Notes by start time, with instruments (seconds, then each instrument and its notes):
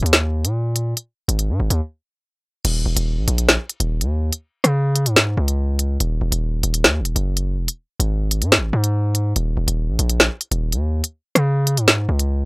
0.02 808-style bass D#2, closed hi-hat
0.13 snare, closed hi-hat
0.44 808-style bass A#2, closed hi-hat
0.76 closed hi-hat
0.97 closed hi-hat
1.28 808-style bass G#1, closed hi-hat
1.39 closed hi-hat
1.49 808-style bass G#2
1.60 808-style bass G#1
1.70 808-style bass D#2, closed hi-hat
2.65 808-style bass D#1, closed hi-hat, crash
2.86 808-style bass D#1
2.96 808-style bass D#1, closed hi-hat
3.17 808-style bass A#1
3.28 808-style bass A#1, closed hi-hat
3.38 closed hi-hat
3.49 snare
3.69 closed hi-hat
3.80 808-style bass D#1, closed hi-hat
4.01 808-style bass D#2, closed hi-hat
4.33 closed hi-hat
4.64 808-style bass C#3, cross-stick, closed hi-hat
4.96 closed hi-hat
5.06 808-style bass G#2, closed hi-hat
5.16 snare
5.37 808-style bass C#2
5.48 closed hi-hat
5.79 closed hi-hat
6.00 808-style bass D#1, closed hi-hat
6.21 808-style bass D#1
6.32 808-style bass D#1, closed hi-hat
6.63 808-style bass D#1, closed hi-hat
6.74 closed hi-hat
6.84 808-style bass D#2, snare
7.00 808-style bass D#1
7.05 closed hi-hat
7.16 808-style bass F#1, closed hi-hat
7.37 closed hi-hat
7.58 808-style bass E1
7.68 closed hi-hat
8.00 808-style bass G#1, closed hi-hat
8.31 closed hi-hat
8.42 808-style bass G#2, closed hi-hat
8.52 cross-stick, snare
8.57 808-style bass G#1
8.73 808-style bass G#2
8.84 closed hi-hat
9.15 closed hi-hat
9.36 808-style bass D#1, closed hi-hat
9.57 808-style bass D#1
9.68 808-style bass D#1, closed hi-hat
9.88 808-style bass A#1
9.99 808-style bass A#1, closed hi-hat
10.10 closed hi-hat
10.20 snare
10.41 closed hi-hat
10.51 808-style bass D#1, closed hi-hat
10.72 808-style bass D#2, closed hi-hat
11.04 closed hi-hat
11.35 808-style bass C#3, cross-stick, closed hi-hat
11.67 closed hi-hat
11.77 808-style bass G#2, closed hi-hat
11.88 snare
12.09 808-style bass C#2
12.19 closed hi-hat